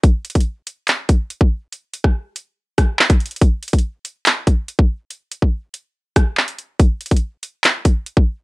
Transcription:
\new DrumStaff \with { instrumentName = "Drums" } \drummode { \time 4/4 \tempo 4 = 142 <hh bd>8 hh32 hh32 <hh bd>32 hh32 r8 hh8 <hc hh>8 <hh bd>8 hh16 bd8. | hh8 hh16 <bd ss>16 r8 hh8 r8 <hh bd ss>8 hc16 <hh bd>16 hh32 hh32 hh32 hh32 | <hh bd>8 hh32 hh32 <hh bd>32 hh32 r8 hh8 <hc hh>8 <hh bd>8 hh16 bd8. | hh8 hh16 bd16 r8 hh8 r8 <hh bd ss>8 hc16 hh16 hh8 |
<hh bd>8 hh32 hh32 <hh bd>32 hh32 r8 hh8 <hc hh>8 <hh bd>8 hh16 bd8. | }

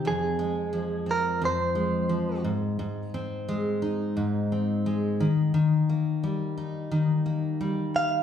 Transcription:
<<
  \new Staff \with { instrumentName = "Clean electric guitar" } { \time 4/4 \key ees \major \tempo 4 = 88 aes'4. bes'8 c''4. r8 | r1 | r2. r8 f''8 | }
  \new Staff \with { instrumentName = "Steel-string acoustic guitar" } { \clef bass \time 4/4 \key ees \major f,8 aes8 f8 c'8 f,8 aes8 f8 aes,8 | aes,8 c'8 aes8 ees'8 aes,8 c'8 aes8 ees8 | ees8 bes8 g8 ees'8 ees8 bes8 g4 | }
>>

